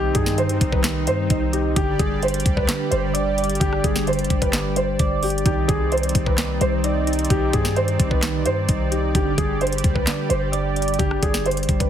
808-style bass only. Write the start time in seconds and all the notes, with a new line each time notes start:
Already playing: C2
0.15 G2
0.61 C2
1.07 G2
1.30 C2
1.76 G1
1.99 G1
2.46 D2
2.92 G1
3.61 G1
3.84 G1
4.30 G1
5.00 G1
5.46 C2
5.69 C2
6.15 C2
6.61 C2
7.30 C2
7.53 G2
8.00 C2
8.46 G2
8.69 C2
9.15 G1
9.38 G1
9.84 D2
10.30 G1
10.99 G1
11.23 G1
11.69 G1